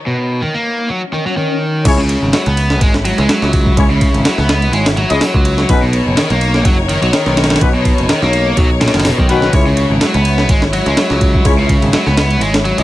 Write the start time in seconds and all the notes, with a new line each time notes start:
Already playing: D#4 C#5
0.06 B2
0.41 D#3
0.54 A#3
0.89 F#3, swell
1.13 D#3
1.26 F#3
1.37 D#3
1.85 C#2 G#3 C#4 E4 G#4 C#5, kick, crash, ride
1.98 C#3
2.09 ride
2.22 G#1
2.33 F#3, snare, ride
2.46 C#2 B3, ride
2.57 ride
2.70 snare
2.81 G#1 G#3, kick, ride
2.94 snare
3.05 F#3, ride
3.18 C#2 G#3, ride
3.29 F#3, snare, ride
3.42 C#2, snare
3.53 kick, ride
3.66 kick
3.77 C#2 C#4 E4 G#4 C#5, kick, ride
3.90 C#3
4.01 kick, ride
4.14 G#1, ride
4.25 F#3, snare, ride
4.38 C#2 B3, snare
4.49 snare, ride
4.62 ride
4.73 G#1 G#3, ride
4.86 snare, ride
4.97 F#3, ride
5.10 C#2 G#3 C#4 E4 G#4 D#5, ride
5.21 F#3, snare, open hi-hat
5.34 C#2, kick
5.45 ride
5.58 snare
5.69 B1 C#4 D#4 F#4 B4, kick, ride
5.82 B2
5.93 ride
6.06 F#1
6.17 D#3, snare, ride
6.30 B1 A#3, ride
6.41 ride
6.54 snare
6.65 F#1 F#3, kick, ride
6.89 D#3, ride
7.02 B1 F#3, ride
7.13 D#3, snare, ride
7.26 B1, snare
7.37 snare, ride
7.44 snare, ride
7.50 snare, ride
7.56 snare, ride
7.61 B1 C#4 D#4 F#4 B4, kick, ride
7.74 B2
7.85 kick, ride
7.98 F#1, ride
8.09 D#3, snare, ride
8.22 B1 A#3, snare
8.33 ride
8.57 B1 F#3, kick, ride
8.81 A#2, snare, ride
8.88 snare, ride
8.94 F#1 D#3, snare, ride
8.99 snare, ride
9.05 B2, snare, open hi-hat
9.18 B1 D#3, kick
9.29 D#3 C#4 D#4 F#4 B4, ride
9.42 D#3, snare
9.53 C#2 G#3 C#4 E4 G#4 C#5, kick, ride
9.67 C#3
9.77 ride
9.90 G#1
10.01 F#3, snare, ride
10.14 C#2 B3, ride
10.25 ride
10.38 snare
10.49 G#1 G#3, kick, ride
10.62 snare
10.73 F#3, ride
10.86 C#2 G#3, ride
10.97 F#3, snare, ride
11.10 C#2, snare
11.21 kick, ride
11.34 kick
11.45 C#2 C#4 E4 G#4 C#5, kick, ride
11.59 C#3
11.69 kick, ride
11.82 G#1, ride
11.93 F#3, snare, ride
12.06 C#2 B3, snare
12.17 snare, ride
12.31 ride
12.41 G#1 G#3, ride
12.54 snare, ride
12.65 F#3, ride
12.78 C#2 G#3 C#4 E4 G#4 D#5, ride